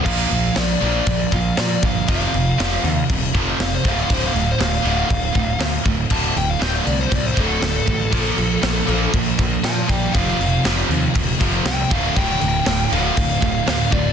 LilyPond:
<<
  \new Staff \with { instrumentName = "Lead electric guitar" } { \time 4/4 \key d \minor \tempo 4 = 119 f''4 d''4. f''8 d''8 f''8 | f''2 r4 f''16 c''16 f''16 f''16 | c''16 f''16 f''16 c''16 f''8 f''2 r8 | a''8 g''16 f''16 g''16 f''16 d''16 c''16 d''16 c''16 a'8 a'4~ |
a'2 r4 <f'' a''>8 <d'' g''>8 | f''4 r2 g''8 f''8 | g''4. f''4. f''8 d''8 | }
  \new Staff \with { instrumentName = "Distorted electric guitar" } { \time 4/4 \key d \minor r1 | r1 | r1 | r1 |
<bes, f bes d' f' bes'>2.~ <bes, f bes d' f' bes'>8 <bes, f bes d' f' bes'>8 | <f, c f bes c' f'>2.~ <f, c f bes c' f'>8 <d, a, d a f'>8~ | <d, a, d a f'>2. <d, a, d a f'>8 <d, a, d a f'>8 | }
  \new Staff \with { instrumentName = "Distorted electric guitar" } { \clef bass \time 4/4 \key d \minor <bes, f bes>8 <bes, f>8 <bes, f>8 <bes, f bes>8 <bes, f>8 <bes, f>8 <bes, f>8 <bes, f>8 | <f, c f>8 <f, c>8 <f, c f>8 <f, c>8 <f, c>8 <f, c f>8 <f, c>8 <d, a, d>8 | <d, a, d>8 <d, a,>8 <d, a,>8 <d, a, d>8 <d, a,>8 <d, a,>8 <d, a,>8 <d, a,>8 | <d, a, d>8 <d, a,>8 <d, a, d>8 <d, a,>8 <d, a,>8 <d, a, d>8 <d, a,>8 <d, a,>8 |
<bes, f bes>8 <bes, f>8 <bes, f>8 <bes, f bes>8 <bes, f>8 <bes, f>8 <bes, f>8 <bes, f>8 | <f, c f>8 <f, c>8 <f, c f>8 <f, c>8 <f, c>8 <f, c f>8 <f, c>8 <d, a, d>8 | <d, a, d>8 <d, a,>8 <d, a,>8 <d, a, d>8 <d, a,>8 <d, a,>8 <d, a,>8 <d, a,>8 | }
  \new Staff \with { instrumentName = "Distorted electric guitar" } { \clef bass \time 4/4 \key d \minor <bes, f bes>8 <bes, f>8 <bes, f>8 <bes, f bes>8 <bes, f>8 <bes, f>8 <bes, f>8 <bes, f>8 | <f, c f>8 <f, c>8 <f, c f>8 <f, c>8 <f, c>8 <f, c f>8 <f, c>8 <d, a, d>8 | <d, a, d>8 <d, a,>8 <d, a,>8 <d, a, d>8 <d, a,>8 <d, a,>8 <d, a,>8 <d, a,>8 | <d, a, d>8 <d, a,>8 <d, a, d>8 <d, a,>8 <d, a,>8 <d, a, d>8 <d, a,>8 <d, a,>8 |
<bes, f bes>8 <bes, f>8 <bes, f>8 <bes, f bes>8 <bes, f>8 <bes, f>8 <bes, f>8 <bes, f>8 | <f, c f>8 <f, c>8 <f, c f>8 <f, c>8 <f, c>8 <f, c f>8 <f, c>8 <d, a, d>8 | <d, a, d>8 <d, a,>8 <d, a,>8 <d, a, d>8 <d, a,>8 <d, a,>8 <d, a,>8 <d, a,>8 | }
  \new Staff \with { instrumentName = "Picked electric bass" } { \clef bass \time 4/4 \key d \minor bes,,8 bes,,8 bes,,8 bes,,8 bes,,8 bes,,8 bes,8 g,,8 | f,,8 f,,8 f,,8 ees,8 ees,,8 f,,8 f,,8 d,,8 | d,,8 d,,8 d,,8 d,,8 d,,8 d,,8 d,8 d,,8 | d,,8 d,,8 d,,8 c,8 c,8 d,,8 d,,8 a,,8 |
bes,,8 bes,,8 bes,,8 bes,,8 bes,,8 bes,,8 bes,8 bes,,8 | f,,8 f,,8 f,,8 ees,8 ees,,8 f,,8 c,8 d,,8 | d,,8 d,,8 d,,8 d,,8 d,,8 d,,8 d,8 d,,8 | }
  \new DrumStaff \with { instrumentName = "Drums" } \drummode { \time 4/4 <cymc bd>8 cymc8 <cymc sn>8 cymc8 <cymc bd>8 <cymc bd>8 <cymc sn>8 <cymc bd>8 | <cymc bd>8 cymc8 <cymc sn>8 cymc8 <cymc bd>8 <cymc bd>8 <cymc sn>8 <cymc bd>8 | <cymc bd>8 cymc8 <cymc sn>8 cymc8 <cymc bd>8 <cymc bd>8 <cymc sn>8 <cymc bd>8 | <cymc bd>8 cymc8 <cymc sn>8 cymc8 <cymc bd>8 <cymc bd>8 <cymc sn>8 <cymc bd>8 |
<cymc bd>8 cymc8 <cymc sn>8 cymc8 <cymc bd>8 <cymc bd>8 <cymc sn>8 <cymc bd>8 | <cymc bd>8 cymc8 <cymc sn>8 cymc8 <cymc bd>8 <cymc bd>8 <cymc sn>8 <cymc bd>8 | <cymc bd>8 cymc8 <cymc sn>8 cymc8 <cymc bd>8 <cymc bd>8 <cymc sn>8 <cymc bd>8 | }
>>